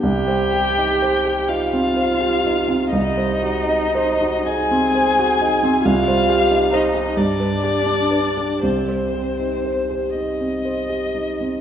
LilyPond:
<<
  \new Staff \with { instrumentName = "Violin" } { \time 6/8 \key c \minor \tempo 4. = 41 g''4. f''4. | ees''4. aes''4. | f''4 ees''8 d''4. | c''4. ees''4. | }
  \new Staff \with { instrumentName = "Grand piano" } { \time 6/8 \key c \minor c,16 c''16 g'16 ees'16 c''16 g'16 ees'16 c'16 c''16 g'16 ees'16 c'16 | c,16 c''16 ges'16 ees'16 c''16 ges'16 ees'16 c'16 c''16 ges'16 ees'16 c'16 | c,16 c''16 g'16 ees'16 c''16 g'16 g,16 b'16 g'16 d'16 b'16 g'16 | c,16 c''16 g'16 ees'16 c''16 g'16 ees'16 c'16 c''16 g'16 ees'16 c'16 | }
  \new Staff \with { instrumentName = "Cello" } { \time 6/8 \key c \minor g'4. f'4. | ees'4. aes'4. | f'4 ees'8 d'4. | c'4. r4. | }
>>